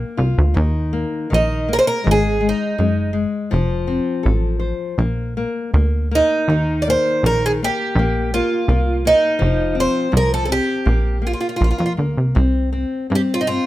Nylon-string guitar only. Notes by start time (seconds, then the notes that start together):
Already playing: A#3
0.17 F4
0.54 D#3
0.93 A#3
1.30 D#3
1.68 A#3
2.04 G#3
2.40 G#3
2.78 G#3
3.13 G#3
3.51 F3
3.87 C4
4.23 A4
4.59 C5
4.98 A#3
5.37 A#3
5.74 A#3
6.11 A#3
6.50 D#3
6.88 A#3
7.25 D#3
7.63 A#3
7.99 A#3
8.34 A#3
8.69 A#3
9.05 A#3
9.39 F3
9.75 C4
10.12 F3
10.49 C4
10.85 A#3
11.22 A#3
11.60 A#3
11.97 A#3
12.35 C4
12.73 C4
13.10 C4
13.49 C4